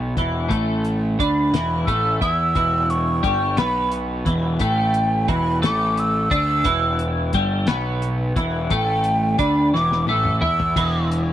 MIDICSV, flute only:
0, 0, Header, 1, 2, 480
1, 0, Start_track
1, 0, Tempo, 682749
1, 361, Time_signature, 6, 3, 24, 8
1, 7965, End_track
2, 0, Start_track
2, 0, Title_t, "Flute"
2, 0, Program_c, 0, 73
2, 848, Note_on_c, 0, 83, 94
2, 1296, Note_off_c, 0, 83, 0
2, 1301, Note_on_c, 0, 88, 90
2, 1543, Note_off_c, 0, 88, 0
2, 1556, Note_on_c, 0, 88, 105
2, 2041, Note_on_c, 0, 85, 85
2, 2052, Note_off_c, 0, 88, 0
2, 2274, Note_off_c, 0, 85, 0
2, 2291, Note_on_c, 0, 85, 84
2, 2521, Note_on_c, 0, 83, 101
2, 2531, Note_off_c, 0, 85, 0
2, 2754, Note_off_c, 0, 83, 0
2, 3248, Note_on_c, 0, 79, 98
2, 3722, Note_on_c, 0, 83, 91
2, 3732, Note_off_c, 0, 79, 0
2, 3954, Note_off_c, 0, 83, 0
2, 3961, Note_on_c, 0, 86, 104
2, 4214, Note_on_c, 0, 88, 92
2, 4225, Note_off_c, 0, 86, 0
2, 4441, Note_off_c, 0, 88, 0
2, 4457, Note_on_c, 0, 88, 112
2, 4915, Note_off_c, 0, 88, 0
2, 6138, Note_on_c, 0, 79, 95
2, 6604, Note_on_c, 0, 83, 81
2, 6615, Note_off_c, 0, 79, 0
2, 6836, Note_off_c, 0, 83, 0
2, 6839, Note_on_c, 0, 86, 106
2, 7073, Note_off_c, 0, 86, 0
2, 7095, Note_on_c, 0, 88, 100
2, 7315, Note_off_c, 0, 88, 0
2, 7319, Note_on_c, 0, 88, 102
2, 7786, Note_off_c, 0, 88, 0
2, 7965, End_track
0, 0, End_of_file